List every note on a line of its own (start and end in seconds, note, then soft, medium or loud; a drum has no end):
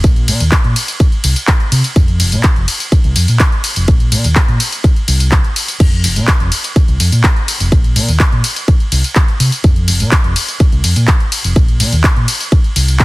0.04 0.30 A#1 loud
0.04 kick loud
0.04 closed hi-hat medium
0.04 tambourine soft
0.16 closed hi-hat soft
0.28 0.42 A#2 medium
0.28 open hi-hat loud
0.28 ride medium
0.28 tambourine medium
0.40 0.49 D#2 medium
0.40 closed hi-hat medium
0.40 tambourine soft
0.52 kick loud
0.52 clap loud
0.52 closed hi-hat medium
0.52 tambourine soft
0.64 0.73 A#2 loud
0.64 closed hi-hat soft
0.76 open hi-hat loud
0.76 ride medium
0.76 tambourine medium
0.88 closed hi-hat medium
0.88 tambourine soft
1.00 kick loud
1.00 closed hi-hat medium
1.00 tambourine soft
1.12 closed hi-hat soft
1.24 1.33 C2 medium
1.24 open hi-hat loud
1.24 ride medium
1.24 tambourine medium
1.36 closed hi-hat medium
1.36 tambourine soft
1.47 kick loud
1.47 clap loud
1.47 closed hi-hat medium
1.47 tambourine soft
1.60 closed hi-hat soft
1.72 1.81 C3 medium
1.72 open hi-hat loud
1.72 ride medium
1.72 tambourine medium
1.84 closed hi-hat medium
1.84 tambourine soft
1.96 2.22 F2 loud
1.96 kick loud
1.96 closed hi-hat medium
1.96 tambourine soft
2.08 closed hi-hat soft
2.20 2.34 F1 loud
2.20 open hi-hat loud
2.20 ride medium
2.20 tambourine medium
2.32 2.41 A#2 medium
2.32 closed hi-hat medium
2.32 tambourine soft
2.43 kick loud
2.43 clap loud
2.43 closed hi-hat medium
2.43 tambourine soft
2.56 2.65 F1 loud
2.56 closed hi-hat soft
2.68 open hi-hat loud
2.68 ride medium
2.68 tambourine medium
2.80 closed hi-hat medium
2.80 tambourine soft
2.92 muted fingered electric bass stroke soft
2.92 kick loud
2.92 closed hi-hat medium
2.92 tambourine soft
3.04 3.13 C2 loud
3.04 closed hi-hat soft
3.16 3.25 F2 medium
3.16 open hi-hat loud
3.16 ride medium
3.16 tambourine medium
3.28 3.37 A#2 loud
3.28 closed hi-hat medium
3.28 tambourine soft
3.39 kick loud
3.39 clap loud
3.39 closed hi-hat medium
3.39 tambourine soft
3.52 closed hi-hat soft
3.64 open hi-hat loud
3.64 ride medium
3.64 tambourine medium
3.76 3.85 F1 medium
3.76 closed hi-hat medium
3.76 tambourine soft
3.88 4.13 A#1 loud
3.88 kick loud
3.88 closed hi-hat medium
3.88 tambourine soft
4.00 closed hi-hat soft
4.12 4.26 A#2 medium
4.12 open hi-hat loud
4.12 ride medium
4.12 tambourine medium
4.24 4.33 D#2 medium
4.24 closed hi-hat medium
4.24 tambourine soft
4.36 kick loud
4.36 clap loud
4.36 closed hi-hat medium
4.36 tambourine soft
4.48 4.57 A#2 loud
4.48 closed hi-hat soft
4.60 open hi-hat loud
4.60 ride medium
4.60 tambourine medium
4.72 closed hi-hat medium
4.72 tambourine soft
4.84 kick loud
4.84 closed hi-hat medium
4.84 tambourine soft
4.96 closed hi-hat soft
5.08 5.39 C2 loud
5.08 open hi-hat loud
5.08 ride medium
5.08 tambourine medium
5.20 closed hi-hat medium
5.20 tambourine soft
5.32 kick loud
5.32 clap loud
5.32 closed hi-hat medium
5.32 tambourine soft
5.44 closed hi-hat soft
5.56 open hi-hat loud
5.56 ride medium
5.56 tambourine medium
5.68 closed hi-hat medium
5.68 tambourine soft
5.80 6.05 F2 loud
5.80 kick loud
5.80 closed hi-hat medium
5.80 crash medium
5.80 tambourine soft
5.92 closed hi-hat soft
6.04 6.18 F1 medium
6.04 open hi-hat loud
6.04 ride medium
6.04 tambourine medium
6.16 6.25 A#2 medium
6.16 closed hi-hat medium
6.16 tambourine soft
6.28 kick loud
6.28 clap loud
6.28 closed hi-hat medium
6.28 tambourine soft
6.40 6.49 F1 loud
6.40 closed hi-hat soft
6.52 open hi-hat loud
6.52 ride medium
6.52 tambourine medium
6.64 closed hi-hat medium
6.64 tambourine soft
6.76 muted fingered electric bass stroke soft
6.76 kick loud
6.76 closed hi-hat medium
6.76 tambourine soft
6.88 6.97 C2 loud
6.88 closed hi-hat soft
7.00 7.09 F2 loud
7.00 open hi-hat loud
7.00 ride medium
7.00 tambourine medium
7.12 7.21 A#2 loud
7.12 closed hi-hat medium
7.12 tambourine soft
7.24 kick loud
7.24 clap loud
7.24 closed hi-hat medium
7.24 tambourine soft
7.37 closed hi-hat soft
7.48 open hi-hat loud
7.48 ride medium
7.48 tambourine medium
7.60 7.69 F1 medium
7.60 closed hi-hat medium
7.60 tambourine soft
7.72 7.97 A#1 loud
7.72 kick loud
7.72 closed hi-hat medium
7.72 tambourine soft
7.84 closed hi-hat soft
7.96 8.10 A#2 loud
7.96 open hi-hat loud
7.96 ride medium
7.96 tambourine medium
8.08 8.17 D#2 medium
8.08 closed hi-hat medium
8.08 tambourine soft
8.20 kick loud
8.20 clap loud
8.20 closed hi-hat medium
8.20 tambourine soft
8.32 8.41 A#2 loud
8.32 closed hi-hat soft
8.44 open hi-hat loud
8.44 ride medium
8.44 tambourine medium
8.56 closed hi-hat medium
8.56 tambourine soft
8.68 kick loud
8.68 closed hi-hat medium
8.68 tambourine soft
8.80 closed hi-hat soft
8.92 9.01 C2 medium
8.92 open hi-hat loud
8.92 ride medium
8.92 tambourine medium
9.04 closed hi-hat medium
9.04 tambourine soft
9.16 kick loud
9.16 clap loud
9.16 closed hi-hat medium
9.16 tambourine soft
9.28 closed hi-hat soft
9.40 9.49 C3 medium
9.40 open hi-hat loud
9.40 ride medium
9.40 tambourine medium
9.52 closed hi-hat medium
9.52 tambourine soft
9.64 9.89 F2 medium
9.64 kick loud
9.64 closed hi-hat medium
9.64 tambourine soft
9.76 closed hi-hat soft
9.88 10.02 F1 medium
9.88 open hi-hat loud
9.88 ride medium
9.88 tambourine medium
10.00 10.09 A#2 medium
10.00 closed hi-hat medium
10.00 tambourine soft
10.11 kick loud
10.11 clap loud
10.11 closed hi-hat medium
10.11 tambourine soft
10.24 10.33 F1 loud
10.24 closed hi-hat soft
10.36 open hi-hat loud
10.36 ride medium
10.36 tambourine medium
10.48 closed hi-hat medium
10.48 tambourine soft
10.60 muted fingered electric bass stroke soft
10.60 kick loud
10.60 closed hi-hat soft
10.60 tambourine soft
10.72 10.81 C2 loud
10.72 closed hi-hat soft
10.84 10.93 F2 medium
10.84 open hi-hat loud
10.84 ride medium
10.84 tambourine medium
10.96 11.05 A#2 loud
10.96 closed hi-hat medium
10.96 tambourine soft
11.08 kick loud
11.08 clap loud
11.08 closed hi-hat medium
11.08 tambourine soft
11.20 closed hi-hat soft
11.32 open hi-hat loud
11.32 ride medium
11.32 tambourine medium
11.44 11.53 F1 medium
11.44 closed hi-hat medium
11.44 tambourine soft
11.56 11.82 A#1 loud
11.56 kick loud
11.56 closed hi-hat medium
11.56 tambourine soft
11.68 closed hi-hat soft
11.80 11.94 A#2 medium
11.80 open hi-hat loud
11.80 ride medium
11.80 tambourine medium
11.92 12.01 D#2 medium
11.92 closed hi-hat medium
11.92 tambourine soft
12.04 kick loud
12.04 clap loud
12.04 closed hi-hat medium
12.04 tambourine soft
12.16 12.25 A#2 loud
12.16 closed hi-hat soft
12.28 open hi-hat loud
12.28 ride medium
12.28 tambourine medium
12.40 closed hi-hat medium
12.40 tambourine soft
12.52 kick loud
12.52 closed hi-hat medium
12.52 tambourine soft
12.64 closed hi-hat soft
12.76 13.05 C2 medium
12.76 open hi-hat loud
12.76 ride medium
12.76 tambourine medium
12.88 closed hi-hat medium
12.88 tambourine soft
13.00 kick loud
13.00 clap loud
13.00 closed hi-hat medium
13.00 tambourine soft